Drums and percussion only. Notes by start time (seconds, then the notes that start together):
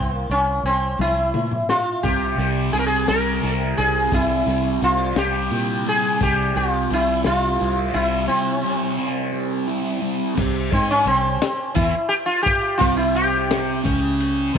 0.31 closed hi-hat
0.66 closed hi-hat
0.99 high tom
1.34 mid tom
1.51 mid tom
1.69 snare
2.04 kick, closed hi-hat
2.39 closed hi-hat
2.73 closed hi-hat
3.08 snare, closed hi-hat
3.43 closed hi-hat
3.77 closed hi-hat
4.12 kick, closed hi-hat
4.47 closed hi-hat
4.81 closed hi-hat
5.16 snare, closed hi-hat
5.51 closed hi-hat
5.86 closed hi-hat
6.21 kick, closed hi-hat
6.56 closed hi-hat
6.90 closed hi-hat
7.24 snare, closed hi-hat
7.59 closed hi-hat
7.94 closed hi-hat
10.37 kick, crash
10.72 kick, ride
11.07 ride
11.42 snare, ride
11.76 kick, ride
12.12 ride
12.46 kick, ride
12.81 kick, ride
13.16 ride
13.51 snare, ride
13.85 kick, ride
14.20 ride